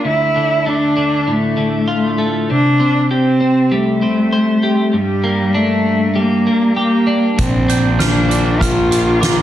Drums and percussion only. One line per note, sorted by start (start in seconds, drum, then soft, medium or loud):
7.38 kick medium
7.38 closed hi-hat medium
7.69 closed hi-hat soft
8.00 snare medium
8.00 closed hi-hat medium
8.31 closed hi-hat soft
8.61 kick medium
8.61 closed hi-hat medium
8.92 closed hi-hat soft
9.23 snare medium
9.23 closed hi-hat medium